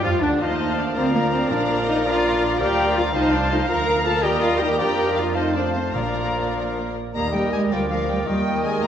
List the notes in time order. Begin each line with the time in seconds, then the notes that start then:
0.03 F2 F3 F4 F5
0.21 D2 D3 D4 D5
0.40 D#2 F3 A3 D#4 F4 C5 D#5 F5 A5
0.78 D4 D5
0.96 D2 F3 A#3 C4 F4 A#4 C5 D5 F5 A#5
1.14 A#3 A#4
1.32 C4 C5
1.50 A#1 A#2 F3 A#3 D4 D5 F5 A#5
1.87 D#4 D#5
2.05 F3 A#3 D4 F4 D5 F5 A#5
2.60 D2 F3 G4 D5 F5 G5 A#5
2.96 A#3 F4 F5
3.14 C2 F3 D#4 C5 D#5 F5 A5
3.32 D4 D5
3.50 A3 D#4 F4 D#5
3.68 D2 F3 A#4 F5 A#5
4.05 A#3 F4 A4 A5
4.23 D#2 G3 G4 A#4 D#5 G5 A#5
4.41 F4 F5
4.59 A#3 D#4 G4 G5
4.78 F2 F3 A#3 D4 G4 A#4 D5 F5 G5 A#5
5.06 D#5
5.16 F4 F5
5.35 F3 A3 C4 D#4 C5 D#5 F5 A5
5.54 D4 D5
5.74 C4 C5
5.94 A#1 A#2 F3 A#3 D4 A#4 D5 F5 A#5
7.14 D#2 G3 A#3 A#4 D#5 A#5
7.32 G3 G4 A#4 D#5 G5
7.52 G#3 G#5
7.70 D2 F3 G3 A#4 D5 F5 G5
7.89 F3 A#4 F5
8.09 G3 G5
8.27 D#2 D#3 G3 D#5 G5
8.45 G4 A#4 D#5
8.65 G#3 G#5
8.82 D#2 A#3 A#5